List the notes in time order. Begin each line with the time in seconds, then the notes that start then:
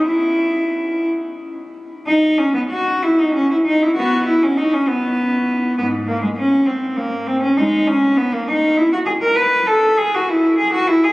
0.05 E4
2.07 D#4
2.38 C#4
2.54 B3
2.70 F#4
3.03 E4
3.20 D#4
3.34 C#4
3.51 E4
3.66 D#4
3.82 E4
3.96 B3 F#4
4.26 E4
4.43 C#4
4.57 D#4
4.73 C#4
4.88 B3
5.78 G#2 B3
6.07 A#3
6.23 G#3
6.37 C#4
6.66 C4
6.96 A#3
7.27 C4
7.42 C#4
7.57 G#3 D#4
7.87 C#4
8.17 B3
8.33 A#3
8.48 D#4
8.77 E4
8.93 F#4
9.06 G#4
9.22 A#4
9.36 B4
9.67 A4
9.97 G#4
10.14 F#4
10.29 E4
10.58 G#4
10.73 F#4
10.87 E4
11.04 G#4